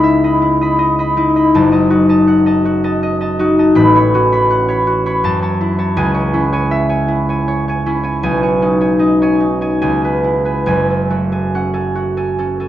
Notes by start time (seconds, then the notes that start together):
Already playing: C#2 D#4 E4 D#5 B5
0.03 E5
0.24 D#5 B5
0.42 E4
0.61 D#5 B5
0.79 D#5
0.99 D#5 B5
1.17 D#4 E4
1.36 D#5 B5
1.54 F#1 F#2 A5
1.72 D#5 A5
1.90 D#4 F#4
2.09 D#5 A5
2.27 F#5
2.46 D#5 A5
2.65 F#4
2.84 D#5 A5
3.03 D#5
3.21 D#5 A5
3.39 D#4 F#4
3.59 D#5 A5
3.75 A1 A2 B5
3.95 C#5 B5
4.14 C#4 F#4
4.32 C#5 B5
4.50 F#5
4.68 C#5 B5
4.87 F#4
5.06 C#5 B5
5.24 F#2 A5
5.42 C#5 A5
5.61 E4
5.79 C#5 A5
5.97 C#2 G#5
6.14 C#5 G#5
6.34 C#4 E4
6.53 C#5 G#5
6.71 E5
6.89 C#5 G#5
7.08 E4
7.29 C#5 G#5
7.48 C#5
7.68 C#5 G#5
7.86 C#4 E4
8.03 C#5 G#5
8.23 B1 G#5
8.43 C#5 G#5
8.62 C#4 D#4
8.81 C#5 G#5
8.99 D#4 D#5
9.22 C#5 G#5
9.40 D#4
9.61 C#5 G#5
9.82 C#2 G#5
10.04 B4 G#5
10.24 E4
10.45 B4 G#5
10.66 F#1 F#2 G#5
10.90 A4 G#5
11.10 A3 F#4
11.32 A4 G#5
11.55 C#4 F#5
11.74 A4 G#5
11.95 F#4
12.17 A4 G#5
12.38 C#4 A4
12.60 A4 G#5